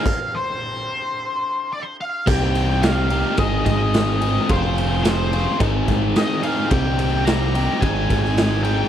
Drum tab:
CC |x---------------|x---------------|----------------|----------------|
RD |----------------|--x-x-x-x-x-x-x-|x-x-x-x-x-x-x-x-|x-x-x-x-x-x-x-x-|
SD |----------------|----o-------o---|----o-------o---|----o------oo---|
BD |o---------------|o-------o-o-----|o-------o-o-----|o-------o-o-----|